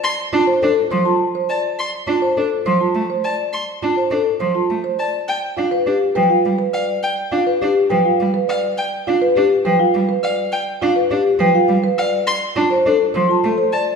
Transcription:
<<
  \new Staff \with { instrumentName = "Violin" } { \time 3/4 \key g \mixolydian \tempo 4 = 103 c'''16 r2 r16 a''16 r16 | c'''16 r2 r16 a''16 r16 | c'''16 r2 r16 a''16 r16 | g''16 r2 r16 f''16 r16 |
g''16 r2 r16 f''16 r16 | g''16 r2 r16 f''16 r16 | g''16 r2 r16 f''16 r16 | c'''16 r2 r16 a''16 r16 | }
  \new Staff \with { instrumentName = "Vibraphone" } { \time 3/4 \key g \mixolydian r8 a''16 c''16 a'16 r16 c'''16 a''16 r8 d''16 r16 | r8 a''16 c''16 a'16 r16 c'''16 a''16 r8 d''16 r16 | r8 a''16 c''16 a'16 r16 c'''16 a''16 r8 d''16 r16 | r8 f''16 b'16 g'16 r16 g''16 f''16 r8 d''16 r16 |
r8 f''16 b'16 g'16 r16 g''16 f''16 r8 d''16 r16 | r8 f''16 b'16 g'16 r16 g''16 f''16 r8 d''16 r16 | r8 f''16 b'16 g'16 r16 g''16 f''16 r8 d''16 r16 | r8 a''16 c''16 a'16 r16 c'''16 a''16 a'16 r16 d''16 r16 | }
  \new Staff \with { instrumentName = "Marimba" } { \time 3/4 \key g \mixolydian r8 f'16 c''16 r8 c''16 f'16 r16 c''16 r8 | r8 f'16 c''16 r8 c''16 f'16 r16 c''16 r8 | r8 f'16 c''16 r8 c''16 f'16 r16 c''16 r8 | r8 f'16 b'16 r8 b'16 f'16 r16 b'16 r8 |
r8 f'16 b'16 r8 b'16 f'16 r16 b'16 r8 | r8 f'16 b'16 r8 b'16 f'16 r16 b'16 r8 | r8 f'16 b'16 r8 b'16 f'16 r16 b'16 r8 | r8 f'16 c''16 r8 c''16 f'16 r16 c''16 r8 | }
  \new Staff \with { instrumentName = "Cello" } { \time 3/4 \key g \mixolydian r8 d'16 r16 d'16 r16 f16 r4 r16 | r8 d'16 r16 d'16 r16 f16 r16 a16 r8. | r8 d'16 r16 d'16 r16 f16 r16 a16 r8. | r8 d'16 r16 d'16 r16 f16 r16 g16 r8. |
r8 d'16 r16 d'16 r16 f16 r16 g16 r8. | r8 d'16 r16 d'16 r16 f16 r16 g16 r8. | r8 d'16 r16 d'16 r16 f16 r16 g16 r8. | r8 d'16 r16 d'16 r16 f16 r16 a16 r8. | }
>>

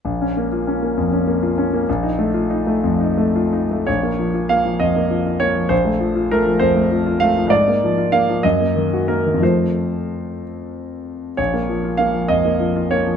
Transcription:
<<
  \new Staff \with { instrumentName = "Grand piano" } { \time 6/8 \key bes \minor \tempo 4. = 65 r2. | r2. | des''4 f''8 ees''4 des''8 | c''4 bes'8 c''4 f''8 |
d''4 f''8 ees''4 bes'8 | c''4. r4. | des''4 f''8 ees''4 des''8 | }
  \new Staff \with { instrumentName = "Grand piano" } { \time 6/8 \key bes \minor bes,,16 des'16 bes16 f'16 des'16 bes16 f,16 des'16 bes16 f'16 des'16 bes16 | bes,,16 ees'16 a16 f'16 ees'16 a16 f,16 ees'16 a16 f'16 ees'16 a16 | bes,,16 bes16 f16 f'16 bes16 f16 f,16 bes16 f16 f'16 bes16 f16 | bes,,16 a16 f16 f'16 a16 f16 f,16 a16 f16 f'16 a16 f16 |
aes,16 bes16 f16 f'16 bes16 f16 ges,16 bes16 ees16 ges'16 bes16 ees16 | <f, f a f'>2. | bes,,16 bes16 f16 f'16 bes16 f16 f,16 bes16 f16 f'16 bes16 f16 | }
>>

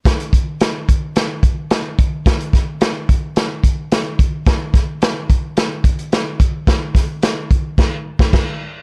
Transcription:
\new DrumStaff \with { instrumentName = "Drums" } \drummode { \time 4/4 \tempo 4 = 109 <hh bd sn>16 hh16 <hh bd>8 <hh sn>8 <hh bd>8 <hh sn>8 <hh bd>8 <hh sn>8 <hh bd>8 | <hh bd sn>16 hh16 <hh bd sn>8 <hh sn>8 <hh bd>8 <hh sn>8 <hh bd>8 <hh sn>8 <hh bd>8 | <hh bd sn>8 <hh bd sn>8 <hh sn>8 <hh bd>8 <hh sn>8 <hh bd>16 hh16 <hh sn>8 <hh bd>8 | <hh bd sn>8 <hh bd sn>8 <hh sn>8 <hh bd>8 <cymc bd sn>8. <bd sn>16 <cymc bd sn>4 | }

